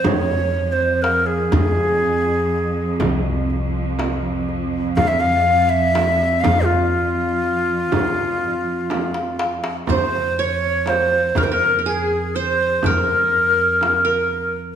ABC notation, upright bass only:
X:1
M:10/8
L:1/8
Q:1/4=61
K:none
V:1 name="Upright bass" clef=bass
F,,3 F,,3 C,,4 | F,,3 F,,3 C,, z3 | F,,3 F,,3 F,,4 |]